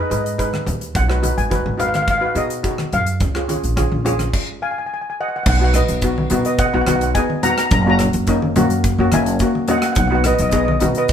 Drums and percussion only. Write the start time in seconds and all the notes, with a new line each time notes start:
0.11 closed hi-hat
0.26 closed hi-hat
0.39 kick, closed hi-hat
0.53 cross-stick, high conga
0.66 closed hi-hat, low conga
0.81 closed hi-hat
0.95 kick, closed hi-hat, low conga
1.10 cross-stick
1.23 closed hi-hat, high conga, low conga
1.38 closed hi-hat
1.51 kick, closed hi-hat, high conga
1.66 high conga
1.79 closed hi-hat, low conga
1.94 cross-stick, closed hi-hat, high conga
2.08 kick, closed hi-hat
2.35 closed hi-hat
2.50 closed hi-hat
2.64 kick, closed hi-hat
2.78 cross-stick, high conga
2.92 closed hi-hat, low conga
3.06 closed hi-hat
3.20 kick, closed hi-hat, low conga
3.35 cross-stick
3.49 closed hi-hat, high conga
3.64 closed hi-hat
3.77 kick, cross-stick, closed hi-hat, high conga
3.92 high conga
4.06 closed hi-hat, low conga
4.19 cross-stick, closed hi-hat, high conga
4.34 kick, crash
5.46 kick, crash, low conga
5.74 cross-stick, closed hi-hat, low conga
5.88 closed hi-hat
6.02 kick, closed hi-hat
6.18 high conga
6.30 closed hi-hat, high conga, low conga
6.45 closed hi-hat
6.58 kick, closed hi-hat
6.87 cross-stick, closed hi-hat, high conga
7.01 closed hi-hat
7.15 kick, closed hi-hat
7.30 high conga
7.43 closed hi-hat, low conga
7.58 cross-stick, closed hi-hat
7.71 kick, closed hi-hat, low conga
7.99 cross-stick, closed hi-hat, low conga
8.13 closed hi-hat
8.27 kick, closed hi-hat
8.42 high conga
8.56 closed hi-hat, high conga, low conga
8.70 closed hi-hat
8.84 kick, closed hi-hat
9.12 cross-stick, closed hi-hat, high conga
9.26 closed hi-hat
9.39 kick, closed hi-hat
9.55 high conga
9.68 closed hi-hat, low conga
9.82 cross-stick, closed hi-hat
9.95 kick, closed hi-hat, low conga
10.24 cross-stick, closed hi-hat, low conga
10.38 closed hi-hat
10.51 kick, closed hi-hat
10.68 high conga
10.80 closed hi-hat, high conga, low conga
10.95 closed hi-hat
11.08 kick, closed hi-hat